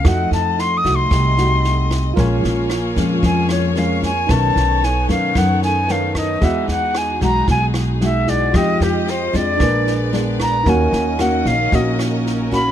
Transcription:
<<
  \new Staff \with { instrumentName = "Flute" } { \time 4/4 \key ees \minor \tempo 4 = 113 ges''8 a''8 \tuplet 3/2 { c'''8 ees'''8 c'''8~ } c'''2 | r2 aes''8 des''8 f''8 aes''8 | a''4 aes''8 f''8 fis''8 aes''8 f''8 dis''8 | e''8 fis''8 gis''8 bes''8 gis''8 r8 e''8 d''8 |
ees''8 g'8 c''8 d''4. r8 bes''8 | aes''4 ges''8 f''8 ees''8 r4 ces'''8 | }
  \new Staff \with { instrumentName = "Tine electric piano" } { \time 4/4 \key ees \minor <a' ees'' ges''>1 | <f' bes' des'' aes''>2. <f' bes' des'' aes''>4 | <dis' b' cis'' a''>2. <dis' b' cis'' a''>4 | <gis' dis'' fis''>2.~ <gis' dis'' fis''>8 <e' gis' dis'' fis''>8 |
<f' ees'' g''>2 <d' bes' ces'' aes''>2 | <ees' bes' des'' ges''>1 | }
  \new Staff \with { instrumentName = "String section" } { \time 4/4 \key ees \minor << { ees''1 | des''1~ | des''1 | r1 |
ees''2 d''2 | ees''1 | } \\ { a1 | <bes f' aes'>1 | <b dis' a'>1 | <fis' gis'>1 |
<aes f' g'>2 <ces' aes'>2 | <des' ges' bes'>1 | } >> }
  \new Staff \with { instrumentName = "Nylon-string guitar" } { \time 4/4 \key ees \minor << { <a ees' ges'>4. <a ees' ges'>4 <a ees' ges'>4. | <f aes des'>4 r8 <f aes des'>4. <f aes des'>8 r8 | <dis a cis'>4 r8 <dis a cis'>4. <dis a cis'>4 | <gis dis' fis'>4. <gis dis' fis'>4. <gis dis' fis'>4 |
<aes ees' g'>4 r8 <aes d'>4. <aes ces' d'>4 | <bes des' ges'>4 <bes des' ges'>8 r8 <bes des' ges'>4. <bes des' ges'>8 | } \\ { f2 c2 | bes,2 f,2 | b,2 fis,2 | e2 b,2 |
f2 bes,2 | ees2 bes,2 | } >> }
  \new Staff \with { instrumentName = "Upright bass" } { \clef bass \time 4/4 \key ees \minor f,8 f,4 c,8 c,2 | bes,,8 bes,,4 f,8 f,2 | b,,8 b,,4 fis,8 fis,2 | e,8 e,4 b,,8 b,,2 |
f,8 f,4 f,8 bes,,2 | ees,8 ees,4 bes,,8 bes,,2 | }
  \new DrumStaff \with { instrumentName = "Drums" } \drummode { \time 4/4 <bd ss sn>8 sn8 sn8 <bd sn>8 <bd ss sn>8 sn8 sn8 <bd ss sn>8 | <bd sn>8 sn8 <ss sn>8 <bd sn>8 <bd sn>8 <ss sn>8 sn8 <bd sn>8 | <bd ss sn>8 sn8 sn8 <bd sn>8 <bd ss sn>8 sn8 sn8 <bd ss sn>8 | <bd sn>8 sn8 <ss sn>8 <bd sn>8 <bd sn>8 <ss sn>8 sn8 <bd sn>8 |
<bd ss sn>8 sn8 sn8 <bd sn>8 <bd ss sn>8 sn8 sn8 <bd ss sn>8 | <bd sn>8 sn8 <ss sn>8 <bd sn>8 <bd sn>8 <ss sn>8 sn8 <bd sn>8 | }
>>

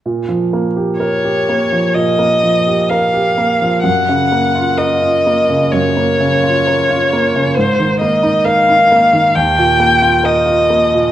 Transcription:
<<
  \new Staff \with { instrumentName = "Violin" } { \time 4/4 \key bes \minor \tempo 4 = 64 r4 des''4 ees''4 f''4 | ges''4 ees''4 des''2 | c''8 ees''8 f''4 g''4 ees''4 | }
  \new Staff \with { instrumentName = "Grand piano" } { \time 4/4 \key bes \minor bes,16 f16 bes16 g'16 bes'16 g'16 bes16 f16 bes,16 bes16 f16 g'16 bes'16 g'16 bes16 f16 | ges,16 des16 bes16 f'16 bes'16 f'16 bes16 des16 ges,16 bes16 des16 f'16 bes'16 f'16 bes16 des16 | aes,16 ees16 bes16 ees'16 bes'16 ees'16 bes16 ees16 ees,16 bes,16 bes16 f'16 bes'16 f'16 bes16 bes,16 | }
>>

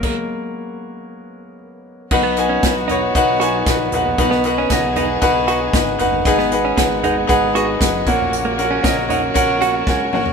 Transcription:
<<
  \new Staff \with { instrumentName = "Grand piano" } { \time 4/4 \key b \major \tempo 4 = 116 << { <ais ais'>2. r4 | r1 | r1 | r1 |
r2 r8 fis''8 gis''4 | } \\ { r1 | <dis' fis' b' fis''>8 <dis' fis' b' gis''>8 <dis' fis' b' fis''>8 <dis' fis' b' cis''>8 <dis' fis' b' fis''>8 <dis' fis' b' gis''>8 <dis' fis' b' fis''>8 <dis' fis' b' fis''>8 | <dis' fis' b' fis''>8 <dis' fis' b' fis''>8 <dis' fis' b' dis''>8 <dis' fis' b' fis''>8 <dis' fis' b' fis''>8 <dis' fis' b' fis''>8 <dis' fis' b' fis''>8 <dis' fis' b' fis''>8 | <dis' gis' b' fis''>8 <dis' gis' b' fis''>8 <dis' gis' b' fis''>8 <dis' gis' b' fis''>8 <dis' gis' b' fis''>8 <dis' gis' b' dis''>8 <dis' gis' b' fis''>8 <cis' fis' ais' fis''>8~ |
<cis' fis' ais' fis''>8 <cis' fis' ais' fis''>8 <cis' fis' ais' dis''>8 <cis' fis' ais' fis''>8 <cis' fis' ais' fis''>8 <cis' fis' ais'>8 <cis' fis' ais' fis''>8 <cis' fis' ais' fis''>8 | } >> }
  \new Staff \with { instrumentName = "Grand piano" } { \clef bass \time 4/4 \key b \major <fis gis>1 | b,4. r2 r8 | b,4. r2 r8 | gis,4. r2 ais,8~ |
ais,4 r2. | }
  \new Staff \with { instrumentName = "Clean electric guitar" } { \time 4/4 \key b \major r1 | r16 b16 r16 cis'8 r16 dis'16 r8. fis'16 r4 r16 | r16 b16 r16 cis'8 r16 dis'16 r8. fis'16 r4 r16 | r16 b16 r16 cis'8 r16 dis'16 r8. fis'16 r4 r16 |
r16 ais16 r16 cis'8 r16 dis'16 r8. fis'16 r4 r16 | }
  \new Staff \with { instrumentName = "String section" } { \time 4/4 \key b \major << { r1 | fis'1 | gis'1 | fis'1~ |
fis'1 | } \\ { r1 | <dis b>1~ | <dis b>1 | <b, gis>2.~ <b, gis>8 <cis ais>8~ |
<cis ais>1 | } >> }
  \new Staff \with { instrumentName = "Analog synth bass" } { \clef bass \time 4/4 \key b \major r1 | b,,4 b,,4 b,,4 ais,,8 ais,,8 | b,,4 b,,4 b,,4 gis,,8 fis,,8 | gis,,4 gis,,4 gis,,4 fis,,8 ais,,8 |
ais,,4 ais,,4 ais,,4 cis,8 ais,,8 | }
  \new DrumStaff \with { instrumentName = "Drums" } \drummode { \time 4/4 <cymc bd>4 r4 r4 r4 | <cymc bd>8 hh8 <hh bd sn>8 <hh tomfh>8 <hh bd>8 hh8 <hh bd sn>8 <hh tomfh>16 tomfh16 | <hh bd>16 sn16 hh8 <hh bd sn>8 <hh tomfh>8 <hh bd>8 hh8 <hh bd sn>8 <hh tomfh>16 tomfh16 | <hh bd>16 sn16 hh8 <hh bd sn>8 <hh tomfh>8 <hh bd>8 hh8 <hh bd sn>8 <hh bd>16 tomfh16 |
hh8 hh8 <hh bd sn>8 <hh tomfh>8 <hh bd>8 hh8 <bd sn>8 toml16 tomfh16 | }
>>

